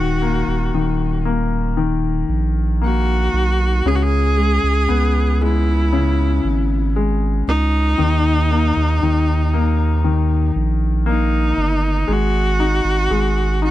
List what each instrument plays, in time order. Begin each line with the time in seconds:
Already playing: sub bass D#1, grand piano D#3, viola F#4
0.22 grand piano A#3
0.47 sub bass D#1
0.73 sub bass D#1, grand piano D#3
1.25 grand piano A#3
1.77 grand piano D#3
2.29 sub bass A#1
2.82 grand piano A#3, viola F#4
3.34 sub bass B1
3.85 sub bass C#2, grand piano C#3, viola G#4
3.95 viola F#4
4.03 viola G#4
4.37 grand piano G#3
4.63 sub bass C#2
4.89 sub bass C#2, grand piano B3
5.42 grand piano G#3, viola E4
5.93 grand piano C#3
6.44 sub bass G#1
6.96 grand piano G#3
7.48 sub bass C#2, viola D#4
7.98 sub bass D#2, grand piano D#3
8.51 grand piano A#3
8.77 sub bass D#2
9.02 sub bass D#2, grand piano D#3
9.54 grand piano A#3
10.04 grand piano D#3
10.56 sub bass A#1
11.06 grand piano A#3, viola D#4
11.57 sub bass G1
12.08 sub bass G#1, grand piano G#3
12.12 viola F#4
12.60 grand piano D#4
12.84 sub bass G#1
13.10 sub bass G#1, grand piano G#3
13.62 grand piano D#4, viola F#4